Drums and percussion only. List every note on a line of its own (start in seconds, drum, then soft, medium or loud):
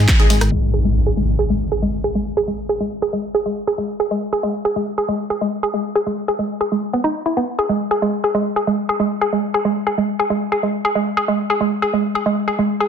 0.08 kick loud
0.08 clap loud
0.08 closed hi-hat medium
0.08 ride medium
0.20 ride medium
0.30 open hi-hat medium
0.30 ride medium
0.41 cross-stick medium
0.41 closed hi-hat medium
0.41 ride medium